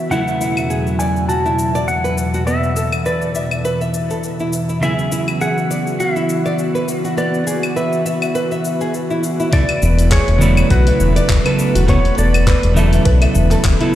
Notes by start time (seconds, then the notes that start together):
Already playing: E5
0.10 E2 B2 C#3 F#3 A3 B3 E4 F#5, cabasa
0.28 cabasa
0.41 E4, cabasa
0.57 cabasa, claves
0.70 G#4, cabasa
0.87 cabasa
0.99 D5 G#5, cabasa
1.16 cabasa
1.29 F#4 A5, cabasa
1.46 E4, cabasa
1.59 cabasa
1.75 D5, cabasa
1.88 F#5, cabasa
2.04 B4, cabasa
2.18 cabasa
2.34 F#4, cabasa
2.47 E3 B3 E5, cabasa
2.63 cabasa
2.76 A4, cabasa
2.92 cabasa, claves
3.06 B4 D5, cabasa
3.22 cabasa
3.35 E5, cabasa
3.51 cabasa, claves
3.65 B4, cabasa
3.81 E5, cabasa
3.94 cabasa
4.10 A4, cabasa
4.23 cabasa
4.39 E4, cabasa
4.53 cabasa
4.69 E4, cabasa
4.80 C#3 F#3 B3 E4 F#4 E5, cabasa
4.84 G#4
4.99 cabasa
5.12 E4, cabasa
5.28 cabasa, claves
5.41 G#4 F#5, cabasa
5.58 cabasa
5.71 D5, cabasa
5.87 cabasa
6.00 F#4 E5, cabasa
6.16 E4, cabasa
6.29 cabasa
6.46 D5, cabasa
6.59 cabasa
6.75 B4, cabasa
6.88 cabasa
7.04 F#4, cabasa
7.17 B3 D5, cabasa
7.34 cabasa
7.47 G#4, cabasa
7.63 cabasa, claves
7.76 B4 E5, cabasa
7.93 cabasa
8.06 E5, cabasa
8.22 cabasa, claves
8.35 B4, cabasa
8.51 E5, cabasa
8.65 cabasa
8.81 G#4, cabasa
8.94 cabasa
9.10 E4, cabasa
9.23 cabasa
9.40 E4, cabasa
9.52 C#3 F#3 A3 B3 E4 A4 B4 D5, kick, open hi-hat, cabasa
9.69 open hi-hat, claves
9.82 E1 E4, cabasa
9.99 open hi-hat, cabasa
10.11 G#4 C#5, kick, clap, open hi-hat, cabasa
10.28 E1, open hi-hat
10.38 C#3 F#3 A3 B3 E4 D5, cabasa
10.57 cabasa, claves
10.70 B1 F#4 B4, kick, open hi-hat, cabasa
10.87 E4, open hi-hat
11.00 E1, cabasa
11.16 D5, open hi-hat, cabasa
11.29 E1, kick, clap, open hi-hat, cabasa
11.44 C#3 F#3 B3 E4 A4 B4, open hi-hat, claves
11.59 cabasa
11.75 E1 F#4, open hi-hat, cabasa
11.87 C#3 F#3 B3 E4 A4 C#5, kick, open hi-hat, cabasa
12.05 open hi-hat
12.18 E1 A4 D5, cabasa
12.34 open hi-hat, cabasa, claves
12.47 B4, kick, clap, open hi-hat, cabasa
12.63 E1, open hi-hat
12.74 C#3 F#3 B3 E4 E5, cabasa
12.78 A4
12.93 open hi-hat, cabasa
13.05 B1 B4, kick, open hi-hat, cabasa
13.22 E5, open hi-hat, claves
13.35 E1, cabasa
13.51 A4, clap, open hi-hat, cabasa
13.64 E1, kick, clap, open hi-hat, cabasa
13.80 C#3 F#3 B3 E4 A4, open hi-hat